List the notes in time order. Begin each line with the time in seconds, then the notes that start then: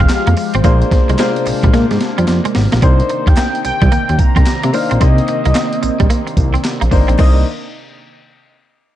Already playing: F3 G#3 D#4 F4 G4 C5 F5
0.00 C4
0.09 snare, clap, closed hi-hat, tambourine
0.27 F2 A#3, closed hi-hat
0.37 muted clean electric guitar stroke, open hi-hat, tambourine
0.54 G#1 C4 C5, closed hi-hat
0.64 A#1 C3 A#3 D4 F4 G#4 C5, kick, closed hi-hat, tambourine
0.82 closed hi-hat
0.91 muted clean electric guitar stroke, kick, snare, closed hi-hat
1.09 C2 G#3, closed hi-hat
1.18 G#3 A#3 D4 F4 G#4 C5, snare, clap, closed hi-hat, tambourine
1.36 closed hi-hat
1.47 A#1, muted clean electric guitar stroke, clap, open hi-hat, tambourine
1.63 A#1 G3, kick, closed hi-hat
1.74 A#2 G#3, snare, closed hi-hat
1.91 G#2, muted clean electric guitar stroke, snare, closed hi-hat
2.01 snare, closed hi-hat
2.18 F2 G3, closed hi-hat
2.28 F2, snare, clap, closed hi-hat
2.45 G#3, closed hi-hat
2.55 G#1, muted clean electric guitar stroke, snare, open hi-hat
2.72 A#1 A#3, snare, closed hi-hat
2.82 C2 C3 D#3 A#3 C4 D4 D#4 C5, kick, closed hi-hat, tambourine
3.00 closed hi-hat
3.09 muted clean electric guitar stroke, closed hi-hat
3.27 D#2 A#3 G5, kick, closed hi-hat
3.37 A#3, snare, clap, closed hi-hat, tambourine
3.55 closed hi-hat
3.65 C2 G5, muted clean electric guitar stroke, closed hi-hat, tambourine
3.82 C2 G3, kick, closed hi-hat
3.92 D#2 A#3, closed hi-hat, tambourine
4.09 D#2, muted clean electric guitar stroke, closed hi-hat
4.19 A#5, kick, closed hi-hat, tambourine
4.36 C2 C4, kick, closed hi-hat
4.46 snare, clap, closed hi-hat, tambourine
4.63 C3 A#3, closed hi-hat
4.73 A#3 D4 D#4 C5 F5, muted clean electric guitar stroke, open hi-hat, tambourine
4.91 A#1 C4, closed hi-hat
5.00 C2 A#3 C4 D#4 C5 D#5, kick, closed hi-hat, tambourine
5.18 closed hi-hat
5.28 muted clean electric guitar stroke, closed hi-hat
5.45 C2 A#3, closed hi-hat
5.55 A#3, snare, clap, closed hi-hat, tambourine
5.73 closed hi-hat
5.83 A#1, muted clean electric guitar stroke, closed hi-hat, tambourine
6.00 A#1 G3, kick, closed hi-hat
6.10 A#3, closed hi-hat, tambourine
6.27 muted clean electric guitar stroke, closed hi-hat
6.37 C2, kick, closed hi-hat, tambourine
6.54 C4, closed hi-hat
6.64 snare, clap, closed hi-hat, tambourine
6.81 A#1 A#3, closed hi-hat
6.91 G#1 A#3 D4 D#4 C5, muted clean electric guitar stroke, kick, open hi-hat, tambourine
7.08 A#1 C4, closed hi-hat
7.18 C2 A#3 C4 D4 D#4 C5 D#5, kick, clap, crash